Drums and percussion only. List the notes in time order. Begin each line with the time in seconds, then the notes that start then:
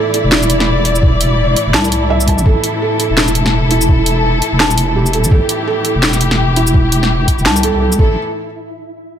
0.14 closed hi-hat
0.32 snare
0.43 snare, shaker
0.50 closed hi-hat
0.60 snare
0.85 closed hi-hat
0.95 shaker
1.03 kick
1.21 closed hi-hat
1.56 closed hi-hat
1.74 snare
1.85 shaker
1.92 closed hi-hat
2.20 shaker
2.28 kick, closed hi-hat
2.38 shaker
2.46 kick
2.64 closed hi-hat
3.00 closed hi-hat
3.17 snare
3.28 snare, shaker
3.35 closed hi-hat
3.46 snare
3.71 closed hi-hat
3.81 shaker
3.89 kick
4.06 closed hi-hat
4.42 closed hi-hat
4.60 snare
4.71 shaker
4.78 closed hi-hat
5.06 shaker
5.13 closed hi-hat
5.24 shaker
5.31 kick
5.49 closed hi-hat
5.85 closed hi-hat
6.03 snare
6.13 snare, shaker
6.21 closed hi-hat
6.31 snare
6.56 closed hi-hat
6.67 shaker
6.74 kick
6.92 closed hi-hat
7.03 snare
7.28 kick, closed hi-hat
7.39 shaker
7.46 snare
7.56 shaker
7.63 closed hi-hat
7.92 shaker
7.99 kick